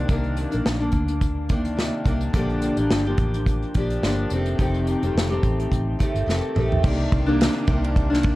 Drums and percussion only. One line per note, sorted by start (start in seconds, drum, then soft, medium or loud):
0.09 kick loud
0.09 closed hi-hat medium
0.24 closed hi-hat soft
0.37 closed hi-hat medium
0.52 closed hi-hat soft
0.66 snare loud
0.92 kick medium
0.92 closed hi-hat medium
1.08 closed hi-hat medium
1.21 kick medium
1.21 closed hi-hat medium
1.49 kick medium
1.49 closed hi-hat medium
1.65 closed hi-hat soft
1.79 snare medium
2.06 kick medium
2.06 closed hi-hat medium
2.21 closed hi-hat soft
2.34 kick loud
2.34 closed hi-hat medium
2.50 closed hi-hat soft
2.62 closed hi-hat medium
2.77 closed hi-hat medium
2.91 snare loud
3.18 kick medium
3.18 closed hi-hat medium
3.34 closed hi-hat soft
3.46 kick medium
3.46 closed hi-hat medium
3.62 closed hi-hat soft
3.74 kick medium
3.74 closed hi-hat medium
3.90 closed hi-hat medium
4.03 snare medium
4.30 closed hi-hat medium
4.46 closed hi-hat soft
4.59 kick loud
4.59 closed hi-hat medium
4.74 closed hi-hat soft
4.87 closed hi-hat medium
5.03 closed hi-hat medium
5.18 snare loud
5.43 kick medium
5.43 closed hi-hat medium
5.60 closed hi-hat soft
5.72 kick medium
5.72 closed hi-hat medium
6.00 kick medium
6.00 closed hi-hat medium
6.16 closed hi-hat medium
6.29 snare soft
6.56 mid tom medium
6.72 floor tom medium
6.84 kick loud
6.84 crash loud
7.12 kick loud
7.12 ride medium
7.41 snare loud
7.41 ride medium
7.67 kick medium
7.67 ride medium
7.84 ride soft
7.96 kick medium
7.96 ride medium
8.14 snare soft
8.23 kick loud
8.23 ride medium